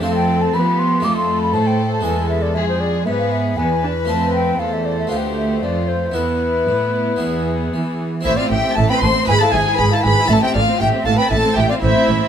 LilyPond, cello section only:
\new Staff \with { instrumentName = "Cello section" } { \clef bass \time 4/4 \key a \minor \tempo 4 = 118 f,4 f4 f,4 a,4 | e,4 f,4 gis,4 e,4 | f,4 e,4 d,4 f,4 | e,4 a,4 e,4 e4 |
a,8 a,8 a,8 a,8 gis,8 gis,8 gis,8 gis,8 | a,8 a,8 a,8 a,8 a,8 a,8 a,8 a,8 | }